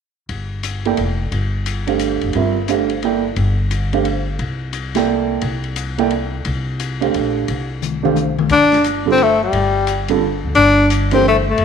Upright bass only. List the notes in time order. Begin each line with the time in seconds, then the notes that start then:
0.29 G1
0.98 F1
1.32 G1
2.23 F1
2.35 G1
3.37 G1
4.39 C2
5.42 C2
6.46 C2
7.15 A#1
7.48 C2
8.50 G1
9.53 G1
10.44 D2
10.56 G1
11.58 G1